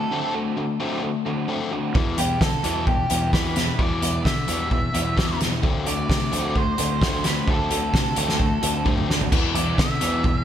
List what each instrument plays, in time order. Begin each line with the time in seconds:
Already playing: overdriven electric guitar D3 A3 C4 F#4, lead electric guitar A4
0.11 overdriven electric guitar D3 A3 C4
0.34 overdriven electric guitar D3 A3 C4 F#4
0.57 overdriven electric guitar D3 A3
0.80 overdriven electric guitar D3 A3 C4 F#4
1.03 overdriven electric guitar D3 A3
1.25 overdriven electric guitar D3 A3 C4 F#4
1.48 overdriven electric guitar D3 A3 C4
1.71 overdriven electric guitar D3 A3 C4 F#4
1.94 overdriven electric guitar E2 B2 E3, fingered electric bass E2, kick
2.17 overdriven electric guitar E2 B2 E3 G3 B3 E4, lead electric guitar G4, closed hi-hat
2.41 overdriven electric guitar E2 B2, fingered electric bass D3, lead electric guitar A4, kick, snare
2.64 overdriven electric guitar E2 B2 E3 G3 B3 E4, fingered electric bass E2, closed hi-hat
2.87 overdriven electric guitar E2 B2, lead electric guitar G4, kick
3.10 overdriven electric guitar E2 B2 E3 G3 B3 E4, fingered electric bass E2, closed hi-hat
3.33 overdriven electric guitar E2 B2 E3, lead electric guitar B4, kick, snare
3.56 overdriven electric guitar E2 B2 E3 G3 B3 E4, snare, closed hi-hat
3.78 overdriven electric guitar E2 B2 E3, fingered electric bass E2, lead electric guitar D5, kick
4.02 overdriven electric guitar E2 B2 E3 G3 B3 E4, closed hi-hat
4.25 overdriven electric guitar E2 B2, fingered electric bass D3, lead electric guitar E5, kick, snare
4.48 overdriven electric guitar E2 B2 E3 G3 B3 E4, fingered electric bass E2, closed hi-hat
4.71 overdriven electric guitar E2 B2, kick
4.94 overdriven electric guitar E2 B2 E3 G3 B3 E4, fingered electric bass E2, closed hi-hat
5.16 overdriven electric guitar E2 B2 E3, kick, snare
5.40 overdriven electric guitar E2 B2 E3 G3 B3 E4, snare, closed hi-hat
5.63 fingered electric bass D2, overdriven electric guitar D3 A3 C4, kick
5.86 overdriven electric guitar D3 A3 C4 F#4, lead electric guitar D5, closed hi-hat
6.09 fingered electric bass C3, overdriven electric guitar D3 A3, kick, snare
6.32 fingered electric bass D2, overdriven electric guitar D3 A3 C4 F#4, closed hi-hat
6.56 overdriven electric guitar D3 A3, lead electric guitar C5, kick
6.78 fingered electric bass D2, overdriven electric guitar D3 A3 C4 F#4, closed hi-hat
7.01 overdriven electric guitar D3 A3 C4, kick, snare
7.24 overdriven electric guitar D3 A3 C4 F#4, lead electric guitar B4, snare, closed hi-hat
7.47 fingered electric bass D2, overdriven electric guitar D3 A3 C4, lead electric guitar A4, kick
7.70 overdriven electric guitar D3 A3 C4 F#4, closed hi-hat
7.94 fingered electric bass C3, overdriven electric guitar D3 A3, kick, snare
8.16 fingered electric bass D2, overdriven electric guitar D3 A3 C4 F#4, closed hi-hat
8.29 snare
8.40 overdriven electric guitar D3 A3, kick
8.62 fingered electric bass D2, overdriven electric guitar D3 A3 C4 F#4, closed hi-hat
8.85 overdriven electric guitar D3 A3 C4, kick, high tom
8.98 mid tom
9.08 overdriven electric guitar D3 A3 C4 F#4, snare
9.21 floor tom
9.32 overdriven electric guitar E2 B2 E3, fingered electric bass E2, kick, crash
9.54 overdriven electric guitar E2 B2 E3 G3 B3 E4, lead electric guitar D5, closed hi-hat
9.78 overdriven electric guitar E2 B2, fingered electric bass D3, lead electric guitar E5, kick, snare
10.00 overdriven electric guitar E2 B2 E3 G3 B3 E4, fingered electric bass E2, closed hi-hat
10.24 overdriven electric guitar E2 B2, kick